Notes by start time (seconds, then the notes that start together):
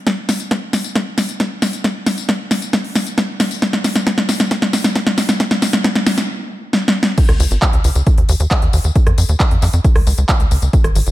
0.07 kick, snare, closed hi-hat, tambourine
0.29 snare, open hi-hat, tambourine
0.40 closed hi-hat, tambourine
0.51 kick, snare, closed hi-hat, tambourine
0.73 snare, open hi-hat, tambourine
0.84 closed hi-hat, tambourine
0.95 kick, snare, closed hi-hat, tambourine
1.18 snare, open hi-hat, tambourine
1.29 closed hi-hat, tambourine
1.40 kick, snare, closed hi-hat, tambourine
1.62 snare, open hi-hat, tambourine
1.73 closed hi-hat, tambourine
1.84 kick, snare, closed hi-hat, tambourine
2.06 snare, open hi-hat, tambourine
2.18 closed hi-hat, tambourine
2.29 kick, snare, closed hi-hat, tambourine
2.51 snare, open hi-hat, tambourine
2.62 closed hi-hat, tambourine
2.73 kick, snare, closed hi-hat, tambourine
2.84 open hi-hat
2.95 snare, open hi-hat, tambourine
3.07 closed hi-hat, tambourine
3.18 kick, snare, closed hi-hat, tambourine
3.40 snare, open hi-hat, tambourine
3.51 closed hi-hat, tambourine
3.62 kick, snare, closed hi-hat, tambourine
3.73 snare
3.84 snare, open hi-hat, tambourine
3.96 snare, closed hi-hat, tambourine
4.07 kick, snare, closed hi-hat, tambourine
4.18 snare
4.29 snare, open hi-hat, tambourine
4.40 snare, closed hi-hat, tambourine
4.51 kick, snare, closed hi-hat, tambourine
4.62 snare
4.73 snare, open hi-hat, tambourine
4.84 snare, closed hi-hat, tambourine
4.95 kick, snare, closed hi-hat, tambourine
5.07 snare
5.18 snare, open hi-hat, tambourine
5.29 snare, closed hi-hat, tambourine
5.40 kick, snare, closed hi-hat, tambourine
5.51 snare
5.62 snare, open hi-hat, tambourine
5.73 snare, closed hi-hat, tambourine
5.84 kick, snare, closed hi-hat, tambourine
5.95 snare
6.06 snare, open hi-hat, tambourine
6.18 snare, closed hi-hat, tambourine
6.73 snare
6.88 snare
7.03 snare
7.18 kick, closed hi-hat, crash, tambourine
7.29 C#2, cross-stick, closed hi-hat
7.40 C#2, open hi-hat, tambourine
7.51 G#1, closed hi-hat, tambourine
7.62 kick, clap, closed hi-hat, tambourine
7.73 C#2, closed hi-hat
7.84 C#2, open hi-hat, tambourine
7.95 C#2, closed hi-hat, tambourine
8.07 kick, closed hi-hat, tambourine
8.18 D#2, closed hi-hat
8.29 D#2, open hi-hat, tambourine
8.40 D#2, closed hi-hat, tambourine
8.51 kick, clap, closed hi-hat, tambourine
8.62 D#2, closed hi-hat
8.73 D#2, open hi-hat, tambourine
8.84 D#2, closed hi-hat, tambourine
8.95 kick, closed hi-hat, tambourine
9.07 F2, cross-stick, closed hi-hat
9.18 F2, open hi-hat, tambourine
9.29 D#2, closed hi-hat, tambourine
9.40 kick, clap, closed hi-hat
9.51 F2, closed hi-hat
9.62 F2, clap, open hi-hat, tambourine
9.73 F2, closed hi-hat, tambourine
9.84 kick, closed hi-hat, tambourine
9.96 C#2, cross-stick, open hi-hat
10.07 C#2, open hi-hat, tambourine
10.18 C#2, closed hi-hat, tambourine
10.29 kick, clap, closed hi-hat, tambourine
10.40 C#2, closed hi-hat
10.51 C#2, open hi-hat, tambourine
10.62 C#2, closed hi-hat, tambourine
10.73 kick, closed hi-hat, tambourine
10.84 G#1, cross-stick, closed hi-hat
10.95 G#1, open hi-hat, tambourine
11.07 F#1, closed hi-hat, tambourine